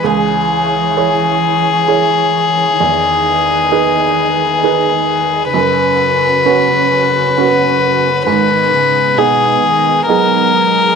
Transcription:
<<
  \new Staff \with { instrumentName = "Violin" } { \time 3/4 \key gis \minor \tempo 4 = 66 gis'2.~ | gis'2. | b'2. | b'4 gis'4 ais'4 | }
  \new Staff \with { instrumentName = "Analog synth pad" } { \time 3/4 \key gis \minor << { cis''2. | b'2.~ | b'2. | b2. | } \\ { <e' gis'>2. | <dis' gis'>2. | <cis' fis'>2. | <dis' gis'>2. | } >> }
  \new Staff \with { instrumentName = "Upright piano" } { \time 3/4 \key gis \minor cis,4 <e' gis' cis''>4 <e' gis' cis''>4 | e,4 <dis' gis' b'>4 <dis' gis' b'>4 | fis,4 <cis' fis' b'>4 <cis' fis' b'>4 | gis,4 <b dis' gis'>4 <b dis' gis'>4 | }
  \new Staff \with { instrumentName = "Cello" } { \clef bass \time 3/4 \key gis \minor e2. | dis2. | cis2. | dis8 cis8 b,8 dis8 fis4 | }
>>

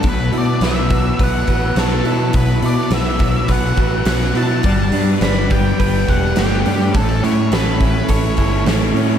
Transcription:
<<
  \new Staff \with { instrumentName = "Lead electric guitar" } { \time 4/4 \key b \minor \tempo 4 = 104 b'8 d''8 e''4 fis''4 a'4 | b'8 d''8 e''4 fis''4 fis''8 a''8~ | a''4 b''8 g''8 g''8 fis''8 g'4 | a'8 cis''8 b'4 cis''4 r4 | }
  \new Staff \with { instrumentName = "Clean electric guitar" } { \time 4/4 \key b \minor b,8 e'8 b'8 fis'8 b'8 fis'8 b8 e'8 | b,8 e'8 b'8 fis'8 b'8 fis'8 b8 e'8 | g8 d'8 b'8 g'8 b'8 g'8 a8 d'8 | a,8 cis'8 a'8 e'8 a'8 e'8 a8 cis'8 | }
  \new Staff \with { instrumentName = "Distorted electric guitar" } { \time 4/4 \key b \minor b,8 b8 e'8 b8 fis'8 b'8 fis'8 e'8 | b,8 b8 e'8 b8 fis'8 b'8 fis'8 e'8 | g8 g8 d'8 g8 b8 a'8 b8 d'8 | a,8 a8 cis'8 a8 e'8 a'8 e'8 cis'8 | }
  \new Staff \with { instrumentName = "Clean electric guitar" } { \time 4/4 \key b \minor fis8 b8 fis8 fis8 b8 fis8 fis8 fis8 | fis8 b8 fis8 fis8 b8 fis8 fis8 fis8 | g8 b8 g8 b8 d'8 g8 b8 g8 | cis'8 e'8 cis'8 cis'8 e'8 cis'8 cis'8 cis'8 | }
  \new Staff \with { instrumentName = "Fingered electric bass" } { \clef bass \time 4/4 \key b \minor b,,8 b,8 b,,4 b,,8 a,,8 b,,8 b,8 | b,,8 b,8 b,,4 b,,8 a,,8 b,,8 b,8 | g,,8 g,8 g,,4 g,,8 e,,8 g,,8 g,8 | a,,8 a,8 a,,4 a,,8 g,,8 a,,8 a,8 | }
  \new DrumStaff \with { instrumentName = "Drums" } \drummode { \time 4/4 <hho bd>8 hho8 <hho sn>8 <hho bd>8 <hho bd>8 <hho bd>8 <hho sn>8 hho8 | <hho bd>8 hho8 <hho sn>8 <hho bd>8 <hho bd>8 <hho bd>8 <hho sn>16 sn16 hho8 | <hho bd>8 hho8 <hho sn>8 <hho bd>8 <hho bd>8 <hho bd>8 <hho sn>16 sn16 hho8 | <hho bd>8 hho8 <hho sn>8 <hho bd>8 <hho bd>8 <hho bd>8 <hho sn>8 hho8 | }
>>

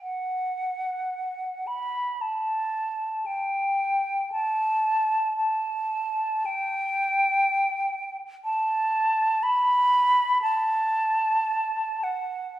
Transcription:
\new Staff \with { instrumentName = "Flute" } { \time 4/4 \key a \dorian \tempo 4 = 57 fis''4. b''8 a''4 g''4 | a''4 a''4 g''4.~ g''16 r16 | a''4 b''4 a''4. fis''8 | }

